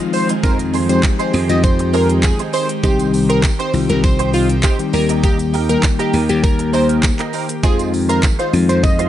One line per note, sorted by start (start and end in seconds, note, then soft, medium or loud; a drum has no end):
0.00 7.59 D#3 medium
0.00 0.33 F3 medium
0.00 0.33 G#3 medium
0.00 2.79 G#3 medium
0.00 0.33 C4 medium
0.00 0.33 D#4 medium
0.00 0.33 F4 medium
0.00 0.41 F4 medium
0.00 downlifter medium
0.13 0.28 C5 medium
0.13 muted clean electric guitar stroke soft
0.13 open hi-hat medium
0.13 tambourine medium
0.13 shaker medium
0.29 0.42 C4 medium
0.29 0.42 D#4 medium
0.29 0.43 G#4 medium
0.29 0.43 C5 medium
0.29 closed hi-hat medium
0.29 shaker medium
0.43 1.05 F2 loud
0.43 0.78 F3 medium
0.43 0.78 G#3 medium
0.43 0.64 C4 medium
0.43 0.78 C4 medium
0.43 0.59 D#4 medium
0.43 0.78 D#4 medium
0.43 0.78 F4 medium
0.43 2.81 G4 loud
0.43 0.58 G#4 medium
0.43 0.57 A#4 loud
0.43 0.58 C5 loud
0.43 kick loud
0.43 tambourine medium
0.43 shaker medium
0.59 muted clean electric guitar stroke medium
0.59 closed hi-hat medium
0.59 tambourine soft
0.59 shaker medium
0.73 0.89 C4 medium
0.73 0.89 D#4 medium
0.73 0.88 G#4 medium
0.73 0.88 C5 medium
0.73 open hi-hat medium
0.73 tambourine soft
0.73 shaker medium
0.89 1.34 F3 medium
0.89 1.34 G#3 medium
0.89 1.34 C4 medium
0.89 1.02 C4 medium
0.89 1.34 D#4 medium
0.89 1.02 D#4 medium
0.89 1.34 G4 medium
0.89 1.03 G#4 medium
0.89 1.03 C5 medium
0.89 1.02 C5 medium
0.89 closed hi-hat medium
0.89 tambourine soft
0.89 shaker medium
1.03 kick loud
1.03 clap loud
1.03 tambourine medium
1.03 shaker medium
1.19 1.32 C4 medium
1.19 1.33 D#4 medium
1.19 1.33 G#4 medium
1.19 1.33 C5 medium
1.19 1.32 C5 medium
1.19 closed hi-hat soft
1.19 shaker soft
1.33 1.44 F2 loud
1.33 1.50 C4 medium
1.33 1.49 D#4 medium
1.33 1.48 G#4 medium
1.33 1.48 C5 medium
1.33 open hi-hat medium
1.33 tambourine medium
1.33 shaker medium
1.49 2.31 F2 loud
1.49 2.40 F3 medium
1.49 2.40 G#3 medium
1.49 2.40 C4 medium
1.49 2.40 D#4 medium
1.49 2.40 F4 medium
1.49 1.62 D#5 medium
1.49 muted clean electric guitar stroke soft
1.49 closed hi-hat medium
1.49 tambourine soft
1.49 shaker medium
1.63 1.90 C5 medium
1.63 muted clean electric guitar stroke soft
1.63 kick loud
1.63 tambourine medium
1.63 shaker medium
1.79 muted clean electric guitar stroke medium
1.79 closed hi-hat medium
1.79 shaker medium
1.93 2.09 C4 medium
1.93 2.09 D#4 medium
1.93 2.08 G#4 medium
1.93 2.08 A#4 medium
1.93 2.08 C5 loud
1.93 open hi-hat medium
1.93 tambourine medium
1.93 shaker medium
2.09 2.22 C4 medium
2.09 2.23 D#4 medium
2.09 2.23 G#4 medium
2.09 2.23 C5 medium
2.09 closed hi-hat medium
2.09 shaker medium
2.23 2.38 G#4 medium
2.23 muted clean electric guitar stroke medium
2.23 kick loud
2.23 clap loud
2.23 tambourine loud
2.23 shaker medium
2.39 2.52 C4 medium
2.39 2.53 D#4 medium
2.39 2.53 G#4 medium
2.39 2.53 C5 medium
2.39 closed hi-hat medium
2.39 shaker medium
2.53 2.74 C4 medium
2.53 2.69 D#4 medium
2.53 2.69 G#4 medium
2.53 2.68 C5 medium
2.53 open hi-hat medium
2.53 tambourine medium
2.53 shaker medium
2.69 muted clean electric guitar stroke soft
2.69 closed hi-hat medium
2.69 shaker medium
2.83 3.45 C2 loud
2.83 3.52 D#3 medium
2.83 3.52 G3 medium
2.83 3.11 C4 medium
2.83 4.91 C4 medium
2.83 3.52 C4 medium
2.83 3.11 D#4 medium
2.83 3.52 D#4 medium
2.83 7.60 G4 medium
2.83 2.98 G4 loud
2.83 3.52 G4 medium
2.83 3.12 G4 loud
2.83 3.12 C5 loud
2.83 kick loud
2.83 tambourine medium
2.83 shaker medium
2.99 closed hi-hat medium
2.99 tambourine soft
2.99 shaker medium
3.13 muted clean electric guitar stroke soft
3.13 open hi-hat medium
3.13 tambourine soft
3.13 shaker medium
3.29 3.42 C4 medium
3.29 3.43 D#4 medium
3.29 3.43 G4 medium
3.29 3.42 A#4 medium
3.29 3.43 C5 medium
3.29 closed hi-hat medium
3.29 shaker medium
3.43 muted clean electric guitar stroke soft
3.43 kick loud
3.43 clap loud
3.43 tambourine medium
3.43 shaker medium
3.59 3.72 C4 medium
3.59 3.73 D#4 medium
3.59 3.73 G4 medium
3.59 3.73 C5 medium
3.59 3.72 C5 medium
3.59 closed hi-hat soft
3.59 shaker medium
3.73 3.84 C2 loud
3.73 4.53 D#3 medium
3.73 4.53 G3 medium
3.73 4.53 C4 medium
3.73 4.53 D#4 medium
3.73 4.53 F4 medium
3.73 muted clean electric guitar stroke soft
3.73 open hi-hat medium
3.73 tambourine medium
3.73 shaker medium
3.89 4.60 C2 loud
3.89 4.02 A#4 medium
3.89 muted clean electric guitar stroke medium
3.89 closed hi-hat medium
3.89 shaker medium
4.03 4.30 C5 medium
4.03 muted clean electric guitar stroke medium
4.03 kick loud
4.03 tambourine medium
4.03 shaker medium
4.19 4.32 C4 medium
4.19 4.33 D#4 medium
4.19 4.33 G4 medium
4.19 4.33 C5 medium
4.19 closed hi-hat medium
4.19 shaker medium
4.33 4.50 C4 medium
4.33 4.49 D#4 medium
4.33 4.48 F4 medium
4.33 4.48 G4 medium
4.33 4.48 C5 medium
4.33 open hi-hat medium
4.33 tambourine soft
4.33 shaker medium
4.49 muted clean electric guitar stroke soft
4.49 closed hi-hat medium
4.49 shaker medium
4.63 4.84 C4 medium
4.63 4.79 D#4 medium
4.63 4.78 G4 medium
4.63 4.78 G4 loud
4.63 4.78 C5 medium
4.63 kick loud
4.63 clap loud
4.63 tambourine medium
4.63 shaker medium
4.79 4.92 D#3 medium
4.79 4.92 G3 medium
4.79 4.94 C4 medium
4.79 4.92 D#4 medium
4.79 4.92 G4 medium
4.79 muted clean electric guitar stroke medium
4.79 closed hi-hat medium
4.79 shaker medium
4.93 5.75 D#2 loud
4.93 5.53 D#3 medium
4.93 5.53 G3 medium
4.93 5.53 A#3 medium
4.93 7.61 A#3 medium
4.93 5.54 D#4 medium
4.93 5.54 G4 medium
4.93 5.08 A#4 medium
4.93 muted clean electric guitar stroke soft
4.93 open hi-hat medium
4.93 tambourine medium
4.93 shaker medium
5.09 5.22 A#3 medium
5.09 5.22 D#4 medium
5.09 5.23 G4 medium
5.09 5.23 A#4 medium
5.09 closed hi-hat medium
5.09 shaker medium
5.23 5.44 A#3 medium
5.23 5.39 D#4 medium
5.23 5.38 G4 loud
5.23 5.38 G4 medium
5.23 5.38 A#4 loud
5.23 kick loud
5.23 tambourine medium
5.23 shaker medium
5.39 muted clean electric guitar stroke medium
5.39 closed hi-hat medium
5.39 tambourine soft
5.39 shaker medium
5.53 5.69 A#3 medium
5.53 5.69 D#4 medium
5.53 5.68 G4 medium
5.53 5.68 A#4 medium
5.53 open hi-hat medium
5.53 tambourine soft
5.53 shaker medium
5.69 6.14 D#3 medium
5.69 6.14 G3 medium
5.69 6.14 A#3 medium
5.69 5.82 A#3 medium
5.69 6.14 D#4 medium
5.69 5.82 D#4 medium
5.69 5.83 G4 medium
5.69 6.14 G4 medium
5.69 5.83 A#4 medium
5.69 5.82 A#4 medium
5.69 closed hi-hat medium
5.69 tambourine soft
5.69 shaker medium
5.83 muted clean electric guitar stroke soft
5.83 kick loud
5.83 clap loud
5.83 tambourine medium
5.83 shaker medium
5.99 6.12 A#3 medium
5.99 6.12 D#4 medium
5.99 6.13 G4 medium
5.99 6.12 G4 medium
5.99 6.13 A#4 medium
5.99 closed hi-hat soft
5.99 shaker soft
6.13 6.24 D#2 loud
6.13 6.30 A#3 medium
6.13 6.29 D#4 medium
6.13 6.28 G4 medium
6.13 6.28 A#4 medium
6.13 open hi-hat medium
6.13 tambourine medium
6.13 shaker medium
6.29 7.11 D#2 loud
6.29 7.20 D#3 medium
6.29 7.20 G3 medium
6.29 7.20 A#3 medium
6.29 7.20 D#4 medium
6.29 6.42 G4 medium
6.29 7.20 G4 medium
6.29 muted clean electric guitar stroke medium
6.29 closed hi-hat medium
6.29 tambourine soft
6.29 shaker medium
6.43 6.70 A#4 medium
6.43 muted clean electric guitar stroke soft
6.43 kick loud
6.43 tambourine medium
6.43 shaker medium
6.59 muted clean electric guitar stroke soft
6.59 closed hi-hat medium
6.59 shaker medium
6.73 6.89 A#3 medium
6.73 6.89 D#4 medium
6.73 6.88 G4 medium
6.73 6.88 A#4 medium
6.73 6.88 C5 medium
6.73 open hi-hat medium
6.73 tambourine soft
6.73 shaker medium
6.89 7.02 A#3 medium
6.89 7.02 D#4 medium
6.89 7.02 G4 medium
6.89 7.03 A#4 medium
6.89 closed hi-hat medium
6.89 shaker medium
7.03 muted clean electric guitar stroke soft
7.03 kick loud
7.03 clap loud
7.03 tambourine medium
7.03 shaker medium
7.19 7.32 A#3 soft
7.19 7.32 D#4 medium
7.19 7.33 G4 medium
7.19 7.33 A#4 medium
7.19 clap medium
7.19 closed hi-hat medium
7.19 shaker medium
7.33 7.54 A#3 medium
7.33 7.49 D#4 medium
7.33 7.48 G4 medium
7.33 7.48 A#4 loud
7.33 open hi-hat medium
7.33 tambourine medium
7.33 shaker medium
7.49 muted clean electric guitar stroke soft
7.49 closed hi-hat medium
7.49 shaker medium
7.63 8.25 F2 loud
7.63 9.09 D#3 medium
7.63 8.32 F3 medium
7.63 7.91 G#3 medium
7.63 8.32 G#3 medium
7.63 9.09 G#3 medium
7.63 8.32 C4 medium
7.63 7.91 D#4 medium
7.63 8.32 D#4 medium
7.63 9.09 F4 medium
7.63 8.32 F4 medium
7.63 7.91 F4 loud
7.63 7.78 G#4 loud
7.63 7.92 C5 loud
7.63 kick loud
7.63 tambourine medium
7.63 shaker medium
7.79 closed hi-hat medium
7.79 tambourine soft
7.79 shaker medium
7.93 muted clean electric guitar stroke soft
7.93 open hi-hat medium
7.93 tambourine medium
7.93 shaker medium
8.09 8.22 G#3 medium
8.09 8.22 D#4 medium
8.09 8.23 F4 medium
8.09 8.22 A#4 medium
8.09 8.23 C5 medium
8.09 closed hi-hat medium
8.09 tambourine soft
8.09 shaker medium
8.23 kick loud
8.23 clap loud
8.23 tambourine medium
8.23 shaker medium
8.39 8.52 G#3 medium
8.39 8.52 D#4 medium
8.39 8.53 F4 medium
8.39 8.53 C5 medium
8.39 8.52 C5 medium
8.39 closed hi-hat soft
8.39 shaker soft
8.53 8.64 F2 loud
8.53 9.09 F3 medium
8.53 9.09 G#3 medium
8.53 9.09 C4 medium
8.53 9.09 D#4 medium
8.53 9.09 F4 medium
8.53 muted clean electric guitar stroke soft
8.53 open hi-hat medium
8.53 tambourine medium
8.53 shaker medium
8.69 9.09 F2 loud
8.69 8.82 C5 medium
8.69 muted clean electric guitar stroke medium
8.69 closed hi-hat medium
8.69 shaker medium
8.83 9.09 D#5 medium
8.83 muted clean electric guitar stroke soft
8.83 kick loud
8.83 tambourine medium
8.83 shaker medium
8.99 9.09 G#3 medium
8.99 9.09 D#4 medium
8.99 9.09 F4 medium
8.99 9.09 C5 medium
8.99 closed hi-hat medium
8.99 shaker medium